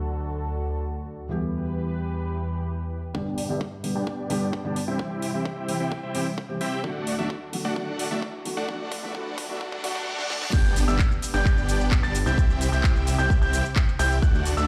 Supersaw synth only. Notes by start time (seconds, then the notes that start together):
3.15 B3 D4 G4 D5 G5
3.49 B3 D4 G4 D5 E5
3.95 B3 D4 G4 D5 G5
4.07 B3 D4 G4 D5 G5
4.65 B3 D4 G4 D5 A5
4.88 C4 E4 G4 E5 G5
5.34 C4 E4 G4 E5 G5
5.80 C4 E4 G4 E5 G5
6.03 C4 E4 G4 E5 G5
6.61 C4 E4 G4 E5 G5
6.84 A3 D4 F#4 D5 F#5
7.18 A3 D4 F#4 D5 E5
7.65 A3 D4 F#4 D5 F#5
7.76 A3 D4 F#4 D5 F#5
8.11 A3 D4 F#4 D5 E5
8.57 A3 D4 F#4 D5 F#5
8.69 A3 D4 F#4 F#5
9.03 A3 D4 F#4 D5 E5
9.15 A3 D4 F#4 D5 F#5
9.49 A3 D4 F#4 D5 E5
9.61 A3 D4 F#4 D5 F#5
9.84 A3 D4 F#4 D5 F#5
10.07 A3 D4 F#4 D5 F#5
10.30 A3 D4 F#4 D5 F#5
10.53 B3 D4 G4
10.88 B3 D4 G4 D5 E5
11.34 B3 D4 G4 D5 G5
11.45 B3 D4 G4 D5 G5
12.03 B3 D4 G4 D5 A5
12.26 C4 E4 G4 E5 G5
12.72 C4 E4 G4 E5 G5
13.19 C4 E4 G4 E5 G5
13.42 C4 E4 G4 E5 G5
13.99 C4 E4 G4 E5 G5
14.22 A3 D4 F#4 D5 F#5
14.57 A3 D4 F#4 D5 E5